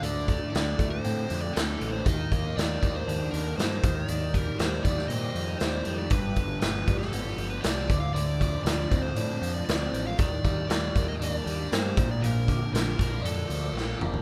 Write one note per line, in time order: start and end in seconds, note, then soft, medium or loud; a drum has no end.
0.02 0.43 D2 medium
0.02 0.52 D3 medium
0.02 0.49 D5 medium
0.02 closed hi-hat medium
0.28 0.77 A3 medium
0.28 kick medium
0.28 closed hi-hat soft
0.50 1.28 D3 medium
0.50 0.87 D5 medium
0.55 0.74 D2 medium
0.55 snare medium
0.55 closed hi-hat medium
0.78 0.99 D2 medium
0.78 1.54 A3 medium
0.78 kick medium
0.78 closed hi-hat medium
0.90 1.41 C5 medium
1.04 1.25 A2 medium
1.04 2.06 C4 medium
1.04 closed hi-hat medium
1.29 1.50 F2 medium
1.29 1.78 D3 medium
1.29 closed hi-hat medium
1.41 1.55 D5 medium
1.53 1.76 D2 medium
1.53 2.06 A3 medium
1.53 1.92 A4 medium
1.53 closed hi-hat medium
1.57 snare loud
1.79 2.01 A1 medium
1.79 2.04 D3 medium
1.79 closed hi-hat medium
1.92 2.06 C5 medium
2.05 2.26 D#2 medium
2.05 2.55 D#3 medium
2.05 2.57 D#5 medium
2.05 kick loud
2.05 closed hi-hat medium
2.31 2.51 D#2 medium
2.31 2.80 A#3 medium
2.31 kick medium
2.31 closed hi-hat medium
2.56 2.77 D#2 medium
2.56 3.31 D#3 medium
2.56 2.96 D5 medium
2.56 snare medium
2.56 closed hi-hat medium
2.81 3.03 D#2 medium
2.81 3.56 A#3 medium
2.81 kick medium
2.81 closed hi-hat medium
2.95 3.31 C5 medium
3.07 3.27 D#2 medium
3.07 3.84 D4 medium
3.07 closed hi-hat medium
3.31 3.53 D#2 medium
3.31 3.83 D#3 medium
3.31 3.57 A#4 medium
3.31 closed hi-hat medium
3.57 3.78 G2 medium
3.57 3.83 A#3 medium
3.57 3.97 C5 medium
3.57 snare loud
3.57 closed hi-hat medium
3.83 4.03 D#2 medium
3.83 4.09 D#3 medium
3.83 kick loud
3.83 closed hi-hat medium
3.95 4.35 D5 medium
4.08 4.49 D#2 medium
4.08 4.59 D#3 medium
4.08 closed hi-hat medium
4.34 4.84 G3 medium
4.34 4.59 A#4 medium
4.34 kick medium
4.34 closed hi-hat soft
4.59 4.79 D#2 medium
4.59 5.35 D#3 medium
4.59 4.83 C5 medium
4.59 snare medium
4.59 closed hi-hat medium
4.83 5.05 D#2 medium
4.83 5.61 G3 medium
4.83 5.08 D5 medium
4.83 kick medium
4.83 closed hi-hat medium
4.99 snare soft
5.08 5.30 A#2 medium
5.08 6.12 C4 medium
5.08 5.57 D#5 medium
5.08 closed hi-hat medium
5.35 5.55 F2 medium
5.35 5.87 D#3 medium
5.35 closed hi-hat soft
5.58 5.81 D#2 medium
5.58 6.13 G3 medium
5.58 5.99 C5 medium
5.58 snare medium
5.58 closed hi-hat medium
5.85 6.07 F2 medium
5.85 6.13 D#3 medium
5.85 closed hi-hat medium
5.98 6.11 D5 medium
6.10 6.32 G1 medium
6.10 7.40 G2 medium
6.10 6.59 B4 medium
6.10 kick loud
6.10 closed hi-hat medium
6.36 6.57 G1 medium
6.36 7.65 D3 medium
6.36 kick medium
6.36 closed hi-hat soft
6.60 6.83 G1 medium
6.60 7.38 F3 medium
6.60 6.98 B4 medium
6.60 snare loud
6.60 closed hi-hat medium
6.88 7.08 G1 medium
6.88 7.62 G3 medium
6.88 kick medium
6.88 closed hi-hat medium
6.99 7.47 A4 medium
6.99 snare soft
7.13 7.33 G1 medium
7.13 7.90 B3 medium
7.13 closed hi-hat medium
7.37 7.58 G1 medium
7.37 7.90 F3 medium
7.37 closed hi-hat medium
7.49 7.64 B4 medium
7.61 7.89 C2 medium
7.61 7.90 G3 medium
7.61 8.00 D5 medium
7.61 snare loud
7.61 closed hi-hat medium
7.88 8.09 D2 medium
7.88 8.13 D3 medium
7.88 kick medium
7.88 closed hi-hat medium
8.00 8.13 F5 medium
8.13 8.55 D2 medium
8.13 9.42 D3 medium
8.13 8.62 D5 medium
8.13 closed hi-hat medium
8.40 8.65 F3 medium
8.40 kick medium
8.40 closed hi-hat medium
8.64 8.85 D2 medium
8.64 9.40 F3 medium
8.64 9.00 D5 medium
8.64 snare loud
8.64 closed hi-hat medium
8.91 9.12 D2 medium
8.91 9.68 C4 medium
8.91 kick medium
8.91 closed hi-hat medium
9.02 9.51 C5 medium
9.16 9.37 A2 medium
9.16 10.22 D4 medium
9.16 closed hi-hat medium
9.42 9.62 F2 medium
9.42 9.93 F3 medium
9.42 closed hi-hat medium
9.54 9.64 D5 medium
9.65 9.88 D2 medium
9.65 10.20 C4 medium
9.65 10.06 D5 medium
9.65 closed hi-hat medium
9.70 snare loud
9.93 10.13 A1 medium
9.93 10.19 F3 medium
9.93 closed hi-hat medium
10.07 10.19 F5 medium
10.18 10.39 D#2 medium
10.18 11.46 D#3 medium
10.18 10.69 D5 medium
10.18 kick loud
10.18 closed hi-hat medium
10.44 10.64 D#2 medium
10.44 10.68 G3 medium
10.44 kick medium
10.44 closed hi-hat soft
10.69 10.90 D#2 medium
10.69 11.46 G3 medium
10.69 11.08 D5 medium
10.69 snare loud
10.69 closed hi-hat medium
10.95 11.15 D#2 medium
10.95 11.70 A#3 medium
10.95 kick medium
10.95 closed hi-hat medium
11.08 11.13 D#5 medium
11.20 11.40 D#2 medium
11.20 13.22 D4 medium
11.20 11.34 D#5 medium
11.20 closed hi-hat medium
11.34 11.75 D5 medium
11.46 11.66 D#2 medium
11.46 11.97 G3 medium
11.46 closed hi-hat medium
11.72 11.92 G2 medium
11.72 11.97 A#3 medium
11.72 12.08 C5 medium
11.72 snare loud
11.72 closed hi-hat medium
11.97 12.17 A#1 medium
11.97 12.22 A#2 medium
11.97 kick loud
11.97 closed hi-hat medium
12.11 12.24 D5 medium
12.22 12.62 A#1 medium
12.22 13.51 A#2 medium
12.22 12.73 A#4 medium
12.22 closed hi-hat medium
12.48 13.76 D3 medium
12.48 kick medium
12.48 closed hi-hat medium
12.73 12.93 A#1 medium
12.73 13.47 F3 medium
12.73 13.21 A#4 medium
12.73 snare medium
12.73 closed hi-hat medium
12.98 13.20 A#1 medium
12.98 13.71 A#3 medium
12.98 kick medium
12.98 closed hi-hat medium
13.22 13.44 F2 medium
13.22 14.22 D4 medium
13.22 13.97 A4 medium
13.22 closed hi-hat medium
13.48 13.70 D2 medium
13.48 13.97 F3 medium
13.48 closed hi-hat medium
13.73 13.94 A#1 medium
13.73 14.22 A#3 medium
13.77 snare soft
13.98 14.20 F1 medium
13.98 14.22 F3 medium
13.98 mid tom medium
14.14 floor tom medium